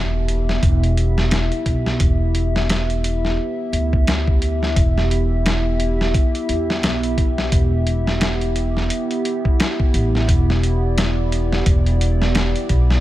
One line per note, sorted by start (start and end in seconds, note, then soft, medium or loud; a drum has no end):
0.00 0.60 E1 loud
0.00 13.00 B3 medium
0.00 13.00 E4 medium
0.00 13.00 G4 medium
0.00 10.29 E5 medium
0.00 impact medium
0.28 closed hi-hat medium
0.49 snare medium
0.63 1.48 E1 loud
0.63 kick loud
0.63 closed hi-hat medium
0.84 closed hi-hat soft
0.97 closed hi-hat medium
1.18 snare medium
1.31 snare loud
1.31 closed hi-hat medium
1.52 closed hi-hat soft
1.66 1.97 B1 medium
1.66 kick medium
1.66 closed hi-hat medium
1.86 snare medium
2.00 3.36 E1 loud
2.00 kick loud
2.00 closed hi-hat medium
2.35 closed hi-hat medium
2.56 snare medium
2.69 snare loud
2.69 closed hi-hat medium
2.90 closed hi-hat soft
3.04 closed hi-hat medium
3.25 snare soft
3.73 4.73 D2 medium
3.73 closed hi-hat medium
3.93 kick medium
4.07 snare loud
4.07 closed hi-hat medium
4.27 kick loud
4.42 closed hi-hat medium
4.63 snare soft
4.76 6.12 E1 loud
4.76 kick loud
4.76 closed hi-hat medium
4.98 snare soft
5.11 closed hi-hat medium
5.46 snare loud
5.46 closed hi-hat medium
5.80 closed hi-hat medium
6.01 snare medium
6.14 kick loud
6.14 closed hi-hat medium
6.35 closed hi-hat soft
6.49 6.83 E2 medium
6.49 closed hi-hat medium
6.70 snare medium
6.83 7.49 B1 medium
6.83 snare loud
6.83 closed hi-hat medium
7.03 closed hi-hat soft
7.18 kick medium
7.18 closed hi-hat medium
7.38 snare medium
7.52 8.87 E1 loud
7.52 kick loud
7.52 closed hi-hat medium
7.87 closed hi-hat medium
8.07 snare medium
8.21 snare loud
8.21 closed hi-hat medium
8.41 closed hi-hat soft
8.56 closed hi-hat medium
8.77 snare soft
8.90 closed hi-hat medium
9.11 closed hi-hat soft
9.25 closed hi-hat medium
9.45 kick medium
9.60 snare loud
9.60 closed hi-hat medium
9.80 kick loud
9.94 10.25 A1 loud
9.94 closed hi-hat medium
10.15 snare soft
10.28 11.64 E1 loud
10.28 13.00 D5 medium
10.28 kick loud
10.28 closed hi-hat medium
10.50 snare soft
10.63 closed hi-hat medium
10.98 snare loud
10.98 closed hi-hat medium
11.32 closed hi-hat medium
11.52 snare medium
11.66 12.52 E1 loud
11.66 kick loud
11.66 closed hi-hat medium
11.86 closed hi-hat soft
12.01 closed hi-hat medium
12.22 snare medium
12.35 snare loud
12.35 closed hi-hat medium
12.56 closed hi-hat soft
12.69 13.00 B1 loud
12.69 kick medium
12.69 closed hi-hat medium
12.90 snare medium